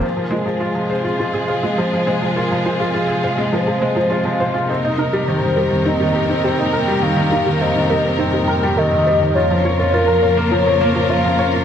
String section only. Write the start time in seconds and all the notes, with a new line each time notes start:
0.03 C3 F3 G#3 F4 G#4
4.69 F2 G3 A#3 D#4 A#4
9.36 C#3 F3 A#3 F4 A#4